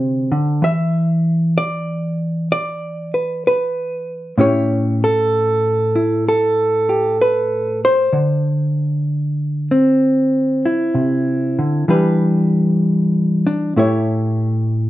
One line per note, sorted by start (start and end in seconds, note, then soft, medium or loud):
0.00 0.31 C3 medium
0.00 0.30 D3 medium
0.00 0.59 D4 medium
0.00 0.59 F#4 medium
0.00 0.59 C5 medium
0.00 0.60 E5 medium
0.32 0.62 D3 medium
0.62 4.33 E3 medium
0.62 1.57 E5 loud
1.58 2.50 D5 loud
2.52 4.38 D5 medium
3.14 3.44 B4 soft
3.47 4.39 B4 medium
4.38 8.12 A2 medium
4.38 8.10 C#4 soft
4.38 5.95 E4 soft
4.38 6.88 G4 soft
4.38 5.02 C#5 medium
5.04 6.27 A4 medium
5.96 8.16 E4 soft
6.29 7.84 A4 medium
6.89 7.19 G4 soft
7.21 8.14 B4 medium
7.85 10.02 C5 medium
8.13 10.94 D3 medium
9.71 11.89 C4 soft
10.66 11.90 E4 soft
10.94 11.57 C3 medium
11.59 11.88 D3 soft
11.88 13.72 E3 medium
11.88 13.76 G3 medium
11.88 13.45 D4 medium
11.88 13.73 G4 soft
11.88 13.73 B4 medium
13.47 13.73 D4 medium
13.76 14.90 A2 medium
13.76 14.90 A3 medium
13.76 14.90 E4 medium
13.76 14.90 G4 medium
13.76 14.90 C#5 medium